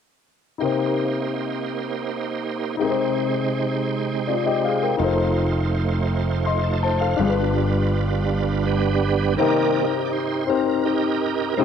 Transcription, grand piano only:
0.58 C3 D#4 G4
0.62 A#4 C5
2.77 C3 D#4 G4
2.81 G#4 A#4
2.90 C5
4.27 F4 D5
4.46 G4 D#5
4.64 G#4 F5
4.83 A#4 G5
4.97 D#4 F4
5.02 A4 C5
6.46 D#5 C6
6.83 C5 A5
7.01 A4 F5
7.17 G2 D4 F4
7.21 G4 G#4
7.30 B4
9.38 C3 C4 D#4 G4 A#4
10.47 C4 D#4 G4 C5
11.57 C3 C4 D#4 G4 G#4

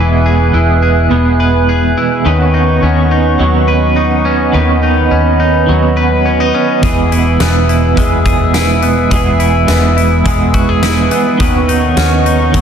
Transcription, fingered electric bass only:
Already playing: E1
0.54 E1
1.11 E1
2.25 D#2
2.83 D#2
3.40 D#2
4.54 D#2
5.11 D#2
5.69 D#2
6.83 E1
7.40 E1
9.11 E1
9.68 E1
11.40 D#2
11.97 D#2
12.54 D#2

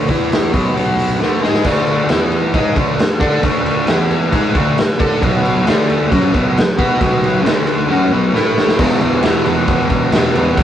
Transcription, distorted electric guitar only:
0.09 E3 B3 E4
0.53 B2 F#3 B3
0.75 B2 F#3 B3
1.19 D3 A3 D4
1.41 G#3 D#4 G#4
1.63 D3 A3 D4
2.10 E3 B3 E4
2.54 G#3 D#4 G#4
2.74 D3 A3 D4
3.20 D4 A4 D5
3.43 D3 A3 D4
3.88 E3 B3 E4
4.31 G#3 D#4 G#4
4.53 D3 A3 D4
4.99 D4 A4 D5
5.21 B2 F#3 B3
5.65 D3 A3 D4
6.10 F#3 C#4 F#4
6.34 B2 F#3 B3
6.78 B3 F#4 B4
7.01 B2 F#3 B3
7.44 D3 A3 D4
7.89 F#3 C#4 F#4
8.12 B2 F#3 B3
8.34 A3 E4 A4
8.77 E2 B2 E3
8.99 B2 E3
9.22 E2 B2 E3
9.45 B2 E3
10.12 E2 B2 E3
10.35 B2 E3
10.55 E2 B2 E3

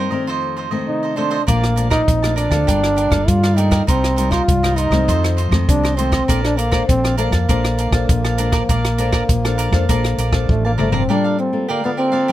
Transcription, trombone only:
Already playing: C4
0.87 D#4
1.16 D4
1.48 A#3
1.91 D#4
2.37 D4
3.28 F4
3.57 D#4
3.89 C4
4.31 F4
4.78 D#4
5.68 D4
5.97 C4
6.44 D4
6.57 A#3
6.89 C4
7.18 A#3
10.50 A3
10.66 A#3
10.79 A3
10.94 C4
11.11 D4
11.40 C4
11.70 A#3
11.85 B3
11.99 C4

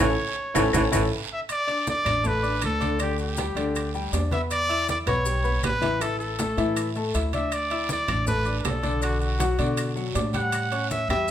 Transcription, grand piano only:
0.00 C#4 E4 A4
0.55 C#4 E4 A4
0.74 C#4 E4 A4
0.92 C#4 E4 A4
1.67 D4 D5 D6
2.04 D4 D5 D6
2.23 A3 A4 A5
2.43 D4 D5 D6
2.80 D3 D4 D5
2.99 D3 D4 D5
3.38 G3 G4 G5
3.56 D3 D4 D5
3.94 G3 G4 G5
4.13 D4 D5 D6
4.31 B3 B4 B5
4.69 E4 E5 E6
5.07 B3 B4 B5
5.25 G3 G4 G5
5.44 B3 B4 B5
5.81 E3 E4 E5
6.01 E3 E4 E5
6.39 A3 A4 A5
6.57 E3 E4 E5
6.96 A3 A4 A5
7.14 E4 E5 E6
7.34 D4 D5 D6
7.71 E4 E5 E6
8.08 D4 D5 D6
8.26 A3 A4 A5
8.45 D4 D5 D6
8.82 D3 D4 D5
9.01 D3 D4 D5
9.39 F#3 F#4 F#5
9.59 D3 D4 D5
9.95 F#3 F#4 F#5
10.15 D4 D5 D6
10.33 G3 G4 F#5
10.71 C#4 C#5 C#6
11.10 G3 G4 G5

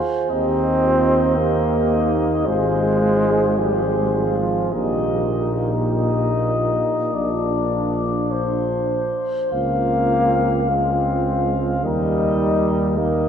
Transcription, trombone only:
0.30 C4
1.38 A#3
2.47 G#3
3.59 F3
3.67 G3
3.75 F3
3.84 G3
3.91 F3
3.99 G3
4.07 F3
4.15 G3
4.24 F3
4.31 G3
4.40 F3
4.73 A#2
9.51 A#3
10.70 G#3
11.84 G3
12.98 A#3

